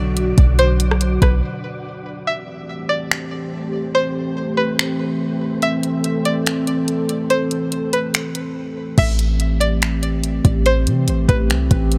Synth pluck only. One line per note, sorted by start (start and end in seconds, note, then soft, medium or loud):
0.59 1.18 C5 loud
1.22 1.81 B4 medium
2.27 2.86 E5 medium
2.89 3.09 D5 medium
3.95 4.54 C5 loud
4.57 4.77 B4 medium
5.63 6.22 E5 loud
6.25 6.45 D5 medium
7.30 7.89 C5 loud
7.93 8.52 B4 medium
8.98 9.57 E5 medium
9.60 9.81 D5 medium
10.66 11.25 C5 loud
11.28 11.48 B4 medium